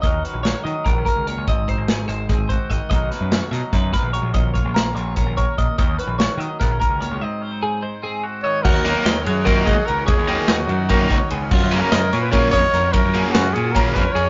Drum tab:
CC |-------|-------|-------|-------|
RD |-------|-------|-------|-------|
HH |xxxxxxx|xxxxxxx|xxxxxxx|xxxxxxx|
SD |--o----|--o----|-ooooo-|--o----|
BD |o---oo-|oo--ooo|o---oo-|oo--ooo|

CC |-------|-------|x------|-------|
RD |-------|-------|-xxxxxx|xxxxxxx|
HH |xxxxxxx|-------|-------|-------|
SD |--o-o--|-------|-oo-o--|--o--o-|
BD |o---oo-|-------|o---oo-|o---oo-|

CC |x------|-------|
RD |-xxxxxx|xxxxxxx|
HH |-------|-------|
SD |-oooo-o|--o-oo-|
BD |o---oo-|o---oo-|